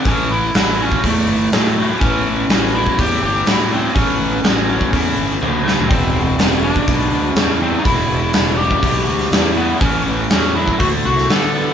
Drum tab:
HH |o---o---o---o---|o---o---o---o---|o---o---o-------|o---o---o---o---|
SD |----o-------o---|----o-------o---|----o---------o-|----o-------o---|
T1 |----------------|----------------|------------o---|----------------|
FT |----------------|----------------|---------------o|----------------|
BD |o------oo-------|o------oo-------|o------oo-------|o------oo-------|

HH |o---o---o---o---|o---o---o---o---|
SD |----o------oo---|----o------oo---|
T1 |----------------|----------------|
FT |----------------|----------------|
BD |o------oo-------|o------oo-------|